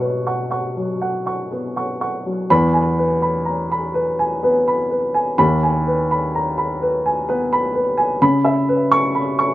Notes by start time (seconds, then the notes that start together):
Already playing: B2 F#5 C#6
0.00 B4
0.27 F#5 C#6
0.51 F#5 C#6
0.77 F#3
1.02 F#5
1.26 F#5 C#6
1.51 B3 B4
1.76 F#5 C#6
2.01 F#5 C#6
2.26 F#3
2.50 E2 B5
2.73 G#5
2.98 B4
3.22 B5
3.45 A#5
3.72 B5
3.94 B4
4.19 G#5
4.43 B3 B4
4.68 B5
4.90 B4
5.14 G#5
5.38 D#2 B5
5.63 G#5
5.87 B4
6.11 B5
6.35 A#5
6.58 B5
6.82 B4
7.06 G#5
7.29 B3 B4
7.53 B5
7.74 B4
7.98 G#5
8.22 C#3 B5
8.45 E5
8.69 B4
8.92 C#6
9.15 B5
9.39 C#6